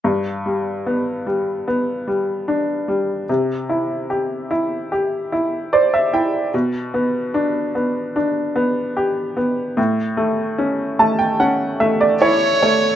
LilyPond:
<<
  \new Staff \with { instrumentName = "Violin" } { \time 4/4 \key g \major \tempo 4 = 74 r1 | r1 | r1 | r2. cis''4 | }
  \new Staff \with { instrumentName = "Upright piano" } { \time 4/4 \key g \major r1 | r2. d''16 e''16 g''8 | r1 | r4. a''16 g''16 fis''8 e''16 d''16 cis''8 cis''8 | }
  \new Staff \with { instrumentName = "Upright piano" } { \time 4/4 \key g \major g,8 g8 b8 g8 b8 g8 d'8 g8 | c8 e'8 g'8 e'8 g'8 e'8 c''8 e'8 | b,8 b8 d'8 b8 d'8 b8 g'8 b8 | a,8 a8 cis'8 a8 cis'8 a8 e'8 a8 | }
>>